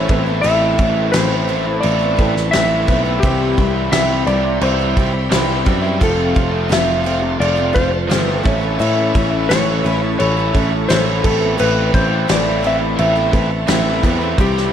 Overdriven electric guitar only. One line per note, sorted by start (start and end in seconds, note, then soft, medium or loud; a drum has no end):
0.00 0.10 E4 medium
0.07 0.41 A2 medium
0.07 0.43 E3 medium
0.07 0.27 A3 medium
0.07 0.27 C4 loud
0.07 0.25 E4 loud
0.25 0.43 A3 medium
0.25 0.45 C4 medium
0.25 0.45 E4 medium
0.43 1.12 A2 medium
0.43 1.14 E3 loud
0.43 0.98 A3 loud
0.43 0.97 C4 medium
0.43 0.95 E4 loud
0.96 1.14 A3 medium
0.96 1.16 C4 medium
0.96 1.16 E4 medium
1.13 1.83 A2 loud
1.13 1.48 E3 loud
1.13 1.48 A3 loud
1.13 1.50 C4 loud
1.13 1.52 E4 loud
1.49 1.67 E3 medium
1.49 1.66 A3 medium
1.49 1.67 C4 medium
1.49 1.65 E4 medium
1.67 muted overdriven electric guitar stroke medium
1.83 2.16 E3 medium
1.83 2.17 A3 medium
1.83 2.19 C4 medium
1.83 2.19 E4 medium
2.17 2.35 E3 medium
2.17 2.35 A3 medium
2.17 2.36 C4 medium
2.17 2.34 E4 medium
2.35 muted overdriven electric guitar stroke soft
2.53 3.20 A2 medium
2.53 2.87 E3 loud
2.53 2.88 A3 medium
2.53 2.90 C4 loud
2.53 2.91 E4 loud
2.88 3.21 E3 medium
2.88 3.06 A3 medium
2.88 3.05 C4 medium
2.88 3.03 E4 medium
3.04 3.22 A3 medium
3.04 3.24 C4 medium
3.04 3.20 E4 medium
3.21 3.90 C3 medium
3.21 3.90 E3 loud
3.21 3.77 G3 loud
3.21 3.76 C4 loud
3.21 3.73 E4 loud
3.74 3.92 G3 medium
3.74 3.93 C4 medium
3.74 3.93 E4 medium
3.91 4.61 C3 loud
3.91 4.24 E3 loud
3.91 4.26 G3 loud
3.91 4.27 C4 loud
3.91 4.28 E4 loud
4.25 4.44 E3 medium
4.25 4.44 G3 medium
4.25 4.43 C4 loud
4.25 4.43 E4 medium
4.44 muted overdriven electric guitar stroke soft
4.61 4.94 E3 medium
4.61 4.95 G3 medium
4.61 4.96 C4 medium
4.61 4.98 E4 medium
4.95 5.13 E3 medium
4.95 5.13 G3 medium
4.95 5.13 C4 medium
4.95 5.12 E4 medium
5.14 muted overdriven electric guitar stroke medium
5.30 5.98 C3 medium
5.30 5.63 E3 medium
5.30 5.64 G3 loud
5.30 5.66 C4 loud
5.30 5.67 E4 loud
5.64 5.98 E3 medium
5.64 5.84 G3 medium
5.64 5.83 C4 medium
5.64 5.81 E4 medium
5.82 6.00 G3 medium
5.82 5.99 C4 medium
5.82 5.98 E4 medium
5.99 6.67 F2 medium
5.99 6.68 C3 medium
5.99 6.54 F3 medium
5.99 6.54 A3 loud
5.99 6.52 C4 medium
5.99 6.50 F4 loud
6.51 6.69 F3 medium
6.51 6.70 A3 medium
6.51 6.70 C4 medium
6.51 6.70 F4 medium
6.68 7.39 F2 loud
6.68 7.40 C3 medium
6.68 7.03 F3 loud
6.68 7.04 A3 loud
6.68 7.05 C4 loud
6.68 7.06 F4 loud
7.04 7.22 F3 medium
7.04 7.22 A3 medium
7.04 7.21 C4 medium
7.04 7.21 F4 loud
7.22 muted overdriven electric guitar stroke medium
7.39 7.72 F3 medium
7.39 7.75 A3 medium
7.39 7.75 C4 medium
7.39 7.76 F4 medium
7.73 7.91 F3 medium
7.73 7.91 A3 medium
7.73 7.90 C4 medium
7.73 7.90 F4 medium
7.91 muted overdriven electric guitar stroke medium
8.08 8.42 F2 medium
8.08 8.42 C3 medium
8.08 8.43 F3 loud
8.08 8.44 A3 loud
8.08 8.43 C4 loud
8.08 8.44 F4 medium
8.43 8.76 A2 medium
8.43 8.78 E3 medium
8.43 8.63 A3 medium
8.43 8.61 C#4 medium
8.43 8.60 E4 loud
8.60 8.78 A3 medium
8.60 8.79 C#4 medium
8.60 8.80 E4 medium
8.77 9.47 A2 medium
8.77 9.48 E3 medium
8.77 9.33 A3 loud
8.77 9.31 C#4 loud
8.77 9.30 E4 loud
9.31 9.48 A3 medium
9.31 9.49 C#4 medium
9.31 9.50 E4 medium
9.47 10.88 A2 loud
9.47 9.82 E3 loud
9.47 9.84 A3 loud
9.47 9.84 C#4 loud
9.47 9.86 E4 loud
9.83 10.03 E3 medium
9.83 10.02 A3 medium
9.83 10.01 C#4 medium
9.83 10.02 E4 loud
10.02 muted overdriven electric guitar stroke medium
10.18 10.53 E3 medium
10.18 10.53 A3 medium
10.18 10.55 C#4 medium
10.18 10.56 E4 loud
10.53 10.73 E3 medium
10.53 10.71 A3 medium
10.53 10.71 C#4 medium
10.53 10.71 E4 medium
10.72 muted overdriven electric guitar stroke medium
10.88 11.21 A2 medium
10.88 11.23 E3 loud
10.88 11.22 A3 medium
10.88 11.23 C#4 medium
10.88 11.25 E4 loud
11.22 11.56 A2 loud
11.22 11.57 E3 medium
11.22 11.41 A3 medium
11.22 11.40 C4 loud
11.22 11.38 E4 loud
11.39 11.58 A3 medium
11.39 11.59 C4 medium
11.39 11.59 E4 medium
11.57 12.26 A2 medium
11.57 12.27 E3 medium
11.57 12.11 A3 medium
11.57 12.09 C4 loud
11.57 12.07 E4 loud
12.09 12.28 A3 soft
12.09 12.29 C4 medium
12.09 12.29 E4 medium
12.27 12.97 A2 loud
12.27 12.61 E3 loud
12.27 12.62 A3 loud
12.27 12.63 C4 loud
12.27 12.64 E4 loud
12.62 12.80 E3 medium
12.62 12.80 A3 medium
12.62 12.80 C4 loud
12.62 12.79 E4 medium
12.81 muted overdriven electric guitar stroke medium
12.96 13.29 E3 medium
12.96 13.31 A3 medium
12.96 13.33 C4 medium
12.96 13.33 E4 medium
13.31 13.50 E3 medium
13.31 13.50 A3 medium
13.31 13.50 C4 medium
13.31 13.49 E4 medium
13.50 muted overdriven electric guitar stroke medium
13.68 14.35 A2 medium
13.68 14.02 E3 medium
13.68 14.03 A3 loud
13.68 14.04 C4 loud
13.68 14.05 E4 medium
14.03 14.35 E3 medium
14.03 14.21 A3 medium
14.03 14.20 C4 medium
14.03 14.18 E4 medium
14.19 14.36 A3 medium
14.19 14.36 C4 medium
14.19 14.35 E4 medium
14.38 14.73 C3 medium
14.38 14.73 E3 loud
14.38 14.73 G3 loud
14.38 14.73 C4 loud
14.38 14.73 E4 medium